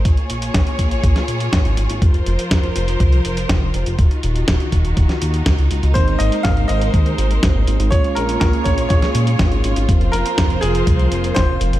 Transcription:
<<
  \new Staff \with { instrumentName = "Grand piano" } { \time 4/4 \key bes \minor \tempo 4 = 122 r1 | r1 | r1 | c''8 ees''8 f''8 ees''2~ ees''8 |
des''8 bes'8 bes'8 des''8 des''4. r8 | r8 bes'4 aes'4. c''4 | }
  \new Staff \with { instrumentName = "String section" } { \time 4/4 \key bes \minor << { <bes aes' des''>1 | <f bes' c''>1 | <ees ges'>1 | <aes bes' c''>1 |
<bes aes' des''>1 | <f bes' c''>1 | } \\ { f'1~ | f'1 | ees'1~ | ees'1 |
f'1~ | f'1 | } >> }
  \new Staff \with { instrumentName = "Analog polysynth" } { \time 4/4 \key bes \minor r1 | r1 | r1 | <aes bes c' ees'>4. <aes bes c' ees'>2 <aes bes c' ees'>8 |
<aes bes des' f'>4. <aes bes des' f'>2 <aes bes des' f'>8 | <f bes c' f'>4. <f bes c' f'>2 <f bes c' f'>8 | }
  \new Staff \with { instrumentName = "Analog synth bass" } { \clef bass \time 4/4 \key bes \minor bes,,16 r16 bes,,8 bes,,16 r16 bes,,8 bes,,16 r16 bes,8 aes,,16 aes,,16 aes,,16 aes,,16 | f,,8 f,,16 r16 f,,8 f,,8 c,8 f,,8 f,,16 f,,16 f,,16 f,,16 | ees,,16 r16 ees,,8 ees,,16 r16 ees,,8 ees,,16 r16 ees,8 des,16 des,16 des,16 des,16 | aes,,8 aes,,16 r16 aes,,8 aes,,8 ees,8 aes,,8 aes,,16 aes,,16 aes,,16 aes,,16 |
bes,,16 r16 bes,,8 bes,,16 r16 bes,,8 bes,,16 r16 bes,8 aes,,16 aes,,16 aes,,16 aes,,16 | f,,8 f,,16 r16 f,,8 f,,8 c,8 f,,8 f,,16 f,,16 f,,16 f,,16 | }
  \new DrumStaff \with { instrumentName = "Drums" } \drummode { \time 4/4 <hh bd>16 hh16 hh16 hh16 <hh bd sn>16 hh16 <hh bd>16 hh16 <hh bd>16 <hh sn>16 hh16 hh16 <hh bd sn>16 hh16 hh16 hh16 | <hh bd>16 hh16 hh16 hh16 <hh bd sn>16 hh16 hh16 hh16 <hh bd>16 hh16 hh16 hh16 <hh bd sn>8 hh16 hh16 | <hh bd>16 hh16 hh16 hh16 <hh bd sn>16 hh16 <hh bd>16 hh16 <hh bd>16 <hh sn>16 hh16 hh16 <hh bd sn>16 hh16 hh16 hh16 | <hh bd>16 hh16 hh16 hh16 <hh bd sn>16 hh16 hh16 hh16 <hh bd>16 hh16 hh16 hh16 <hh bd sn>8 hh16 hh16 |
<hh bd>16 hh16 hh16 hh16 <hh bd sn>16 hh16 <hh bd>16 hh16 <hh bd>16 <hh sn>16 hh16 hh16 <hh bd sn>16 hh16 hh16 hh16 | <hh bd>16 hh16 hh16 hh16 <hh bd sn>16 hh16 hh16 hh16 <hh bd>16 hh16 hh16 hh16 <hh bd sn>8 hh16 hh16 | }
>>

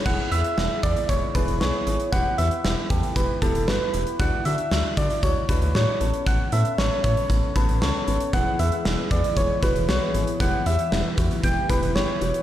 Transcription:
<<
  \new Staff \with { instrumentName = "Soft synth lead" } { \time 4/4 \key e \mixolydian \tempo 4 = 116 fis''8 e''4 d''8 cis''8 b'8 cis''4 | fis''8 e''4 g'8 b'8 a'8 b'4 | fis''8 e''4 d''8 cis''8 b'8 cis''4 | fis''8 e''8 cis''8 cis''4 b'8 cis''4 |
fis''8 e''4 d''8 cis''8 b'8 cis''4 | fis''8 e''4 r8 g''8 b'8 cis''4 | }
  \new Staff \with { instrumentName = "String machine" } { \time 4/4 \key e \mixolydian << { r1 | r1 | r1 | r1 |
<gis' b'>1 | <g' b'>1 | } \\ { r1 | r1 | r1 | r1 |
<e e'>1~ | <e e'>1 | } >> }
  \new Staff \with { instrumentName = "Grand piano" } { \time 4/4 \key e \mixolydian <b e' gis'>8 <b e' gis'>8 <b e' gis'>8 <b e' gis'>8 <b e' gis'>8 <b e' gis'>8 <b e' gis'>8 <b e' gis'>8 | <b e' g'>8 <b e' g'>8 <b e' g'>8 <b e' a'>8 <b e' g'>8 <b e' g'>8 <b e' fis'>8 <b e' g'>8 | <d' e' fis'>8 <d' e' fis'>8 <d' e' fis'>8 <d' e' fis'>8 <d' e' fis'>8 <d' e' fis'>8 <d' e' fis'>8 <b cis' a'>8~ | <b cis' a'>8 <b cis' a'>8 <b cis' a'>8 <b cis' a'>8 <b cis' a'>8 <b cis' a'>8 <b cis' a'>8 <b cis' a'>8 |
<b e' gis'>8 <b e' gis'>8 <b e' gis'>8 <b e' gis'>8 <b e' gis'>8 <b e' fis'>8 <b e' fis'>8 <b e' gis'>8 | <b e' g'>8 <b e' g'>8 <b e' g'>8 <b e' fis'>8 <b e' g'>8 <b e' g'>8 <b e' g'>8 <b e' fis'>8 | }
  \new Staff \with { instrumentName = "Analog synth bass" } { \clef bass \time 4/4 \key e \mixolydian e,,16 r16 e,16 r16 e,,16 r16 e,16 r16 e,,16 r16 e,,16 e,,16 b,,16 r16 gis,,16 r16 | e,,16 r16 e,16 r16 e,,16 r16 e,16 r16 e,,16 r16 e,,16 e,,16 g,,16 r16 e,,16 r16 | d,16 r16 d16 r16 d,16 r16 d16 r16 d,16 r16 d,16 d,16 a,16 r16 a,,16 r16 | a,,16 r16 a,16 r16 a,,16 r16 a,16 r16 a,,16 r16 a,,16 a,,16 cis,16 r16 gis,,16 r16 |
e,,16 r16 e,16 r16 e,,16 r16 e,16 r16 e,,16 r16 e,,16 e,,16 b,,16 r16 gis,,16 r16 | e,,16 r16 e,16 r16 e,,16 r16 e,16 r16 e,,16 r16 e,,16 e,,16 g,,16 r16 e,,16 r16 | }
  \new DrumStaff \with { instrumentName = "Drums" } \drummode { \time 4/4 <cymc bd>8 hh16 hh16 sn8 <hh bd>16 hh16 <hh bd>8 <hh bd>16 hh16 sn8 hh16 hh16 | <hh bd>8 hh16 hh16 sn8 <hh bd>16 hh16 <hh bd>8 <hh bd>16 hh16 sn8 hh16 hh16 | <hh bd>8 hh16 hh16 sn8 <hh bd>16 hh16 <hh bd>8 <hh bd>16 hh16 sn8 hh16 hh16 | <hh bd>8 hh16 hh16 sn8 <hh bd>16 hh16 <hh bd>8 <hh bd>16 hh16 sn8 hh16 hh16 |
<hh bd>8 hh16 hh16 sn8 <hh bd>16 hh16 <hh bd>8 <hh bd>16 hh16 sn8 hh16 hh16 | <hh bd>8 hh16 hh16 sn8 <hh bd>16 hh16 <hh bd>8 <hh bd>16 hh16 sn8 hh16 hh16 | }
>>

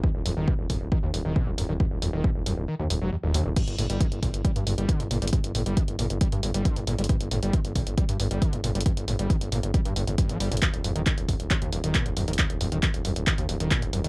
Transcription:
<<
  \new Staff \with { instrumentName = "Acid bass" } { \clef bass \time 4/4 \key g \minor \tempo 4 = 136 ees,16 r16 f,16 ees16 bes,16 r16 ges,16 r16 ees16 ees,16 ees,16 ees16 bes,16 ees,16 ges,16 ees16 | ees,16 r16 f,16 ees16 bes,16 r16 ges,16 r16 ees16 ees,16 ees,16 ges16 ees,16 ees,16 ees,,16 f,16 | g,16 r16 a,16 g16 d16 r16 bes,16 r16 g16 g,16 g,16 g16 d16 g,16 bes,16 g16 | g,16 r16 a,16 g16 d16 r16 bes,16 r16 g16 g,16 g,16 g16 d16 g,16 bes,16 g16 |
g,16 r16 a,16 g16 d16 r16 bes,16 r16 g16 g,16 g,16 g16 d16 g,16 bes,16 g16 | g,16 r16 a,16 g16 d16 r16 bes,16 r16 g16 g,16 g,16 g,,16 g,16 fis16 g16 bes,16 | ees,16 r16 f,16 ees16 ees16 r16 ges,16 r16 ees16 ees,16 ees,16 ees16 bes,16 ees,16 ges,16 ees16 | ees,16 r16 f,16 ees16 ees16 r16 ges,16 r16 ees16 ees,16 ees,16 ees16 bes,16 ees,16 ges,16 ees16 | }
  \new Staff \with { instrumentName = "Analog synth bass" } { \clef bass \time 4/4 \key g \minor r16 ees,,16 ees,,16 ees,,16 r16 ees,,16 ees,,16 ees,,16 r16 ees,16 ees,,16 ees,,16 r16 ees,,16 ees,,16 ees,,16 | r16 ees,,16 ees,,16 ees,,16 r16 ees,,16 ees,,16 ees,,16 r16 ees,16 ees,,16 f,,16 r16 ees,,16 ees,16 ees,,16 | r16 g,,16 g,,16 g,,16 r16 g,,16 g,,16 g,,16 r16 g,16 g,,16 g,,16 r16 g,,16 g,,16 g,,16 | r16 g,,16 g,,16 g,,16 r16 g,,16 g,,16 g,,16 r16 g,16 g,,16 g,,16 r16 g,,16 g,,16 g,,16 |
r16 g,,16 g,,16 g,,16 r16 g,,16 g,,16 g,,16 r16 g,16 g,,16 g,,16 r16 g,,16 g,,16 g,,16 | r16 g,,16 g,,16 g,,16 r16 g,,16 g,,16 g,,16 r16 g,16 g,,16 g,,16 r16 g,,16 g,,16 g,,16 | r16 ees,,16 ees,,16 ees,,16 r16 ees,,16 ees,,16 ees,,16 r16 ees,16 ees,,16 ees,,16 r16 ees,,16 ees,,16 ees,,16 | r16 ees,,16 ees,,16 ees,,16 r16 ees,,16 ees,,16 ees,,16 r16 ees,16 ees,,16 ees,,16 r16 ees,,16 ees,,16 ees,,16 | }
  \new DrumStaff \with { instrumentName = "Drums" } \drummode { \time 4/4 bd8 hho8 bd8 <hho bd>8 bd8 hho8 bd8 hho8 | bd8 hho8 bd8 hho8 r8 hho8 r8 hho8 | <cymc hh bd>16 hh16 hho16 hh16 <hh bd>16 hh16 <hho bd>16 hh16 <hh bd>16 hh16 hho16 hh16 <hh bd>16 hh16 hho16 hh32 hh32 | <hh bd>16 hh16 hho16 hh16 <hh bd>16 hh16 hho16 hh16 <hh bd>16 hh16 hho16 hh16 <hh bd>16 hh16 hho16 hh32 hh32 |
<hh bd>16 hh16 hho16 hh16 <hh bd>16 hh16 <hho bd>16 hh16 <hh bd>16 hh16 hho16 hh16 <hh bd>16 hh16 hho16 hh32 hh32 | <hh bd>16 hh16 hho16 hh16 <hh bd>16 hh16 hho16 hh16 <hh bd>16 hh16 hho16 hh16 <hh bd>16 hh16 hho16 hh32 hh32 | <hc hh bd>16 hh16 hho16 hh16 <hc hh bd>16 hh16 <hho bd>16 hh16 <hc hh bd>16 hh16 hho16 hh16 <hc hh bd>16 hh16 hho16 hh32 hh32 | <hc hh bd>16 hh16 hho16 hh16 <hc hh bd>16 hh16 hho16 hh16 <hc hh bd>16 hh16 hho16 hh16 <hc hh bd>16 hh16 hho16 hh16 | }
>>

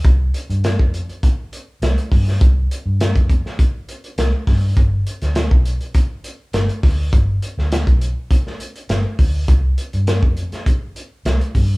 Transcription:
<<
  \new Staff \with { instrumentName = "Fingered electric bass" } { \clef bass \time 4/4 \key g \phrygian \tempo 4 = 102 c,8 r16 g,8 f,8 r4 r16 c,16 r16 g,8 | c,8 r16 g,8 r4. r16 c,16 r16 g,8 | g,,8 r16 d,8 b,,8 r4 r16 g,,16 r16 d,8 | g,,8 r16 d,8 b,,8 r4 r16 g,,16 r16 d,8 |
c,8 r16 g,8 f,8 r4 r16 c,16 r16 g,8 | }
  \new DrumStaff \with { instrumentName = "Drums" } \drummode { \time 4/4 <hh bd>8 hh16 hh16 <hh sn>16 bd16 hh16 hh16 <hh bd>8 hh8 <hh sn>16 hh16 <hho bd>16 sn16 | <hh bd>8 hh8 <hh sn>16 <hh bd>16 <hh bd>16 sn16 <hh bd>8 hh16 hh16 <hh sn>8 <hho bd sn>8 | <hh bd>8 hh16 <hh sn>16 <hh sn>16 bd16 hh16 hh16 <hh bd>8 hh8 <hh sn>16 hh16 <hho bd sn>8 | <hh bd>8 hh16 sn16 <hh sn>16 <hh bd>16 hh8 <hh bd>16 sn16 hh16 hh16 <hh sn>8 <hho bd>8 |
<hh bd>8 hh16 hh16 <hh sn>16 bd16 hh16 <hh sn>16 <hh bd>8 hh8 <hh sn>16 hh16 <hho bd>8 | }
>>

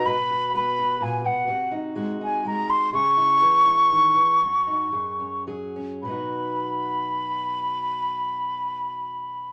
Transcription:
<<
  \new Staff \with { instrumentName = "Flute" } { \time 3/4 \key b \major \tempo 4 = 118 b''4 b''4 gis''8 fis''8~ | fis''8 r4 gis''8 ais''8 bis''8 | cis'''2.~ | cis'''2 r4 |
b''2.~ | b''2. | }
  \new Staff \with { instrumentName = "Steel-string acoustic guitar" } { \time 3/4 \key b \major << { b'8 fis'8 b'8 fis'4. | fis'8 dis'8 fis'8 dis'4. | gis'8 e'8 gis'8 e'4. | fis'8 dis'8 gis'8 cis'8 gis'8 cis'8 |
<fis b dis' fis'>2.~ | <fis b dis' fis'>2. | } \\ { b,4 b4 ais,8 b,8 | bis,4 gis4 gis4 | cis4 e4 dis8 e8 | fis,4 fis,4 fis4 |
b,2.~ | b,2. | } >> }
>>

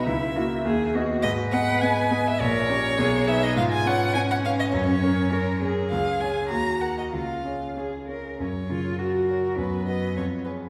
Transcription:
<<
  \new Staff \with { instrumentName = "Violin" } { \time 2/4 \key gis \minor \tempo 4 = 102 e''4. r8 | dis''8 fis''8 gis''8. e''16 | des''4. e''16 dis''16 | \key fis \major eis''16 gis''16 fis''8 gis''16 fis''16 eis''16 dis''16 |
cis''4. r8 | eis''8 gis''8 ais''8 fis''16 dis''16 | eis''4 r4 | cis''4 ais'4 |
b'8 dis''8 cis''8 b'8 | }
  \new Staff \with { instrumentName = "Grand piano" } { \time 2/4 \key gis \minor cis,8 <ais e' e''>8 dis,8 <b fis' dis''>8 | gis,8 <b gis' dis''>8 <b gis' dis''>8 <b gis' dis''>8 | bes,,8 <des' g' des''>8 b,,8 <dis' gis' b'>8 | \key fis \major gis,8 <cis' b' cis''>8 <cis' b' cis''>8 <cis' b' cis''>8 |
fis,8 <cis' ais' cis''>8 <cis' ais' cis''>8 <cis' ais' cis''>8 | cis,8 <cis' gis' cis''>8 dis,8 <fis' ais'>8 | cis,8 <cis' gis' cis''>8 <cis' gis' cis''>8 <cis' gis' cis''>8 | fis,8 cis8 fis'8 cis''8 |
fis,8 <fis' b'>8 eis,8 <gis' cis''>8 | }
  \new Staff \with { instrumentName = "Cello" } { \time 2/4 \key gis \minor e'8 fis'8 gis'8 fis'8 | b'2 | bes'4 gis'4 | \key fis \major eis'4 cis'4~ |
cis'4 ais'8 gis'8~ | gis'4 fis'4 | eis'4 gis'8 ais'8 | cis'8 eis'8 fis'4 |
b4. r8 | }
>>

